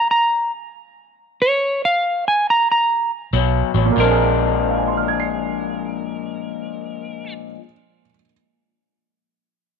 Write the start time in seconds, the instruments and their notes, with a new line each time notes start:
0.11 electric slide guitar A#5
1.42 electric slide guitar C#5
1.85 electric slide guitar F5
2.28 electric slide guitar G#5
2.50 electric slide guitar A#5
2.72 electric slide guitar A#5
3.33 fingered electric bass B1, clean electric guitar B2 F#3
3.74 fingered electric bass A1, clean electric guitar B2 F#3
3.85 upright piano A#2
3.92 upright piano A#3
3.96 fingered electric bass A#1, clean electric guitar A#2 F3 G#3, upright piano C4, electric slide guitar A#4
4.00 clean electric guitar D4
4.04 upright piano D4
4.10 upright piano G#4
4.63 upright piano C5
4.70 upright piano F5
4.78 upright piano G#5
4.88 upright piano C6
4.97 upright piano F6
5.08 upright piano G#6
5.20 upright piano C7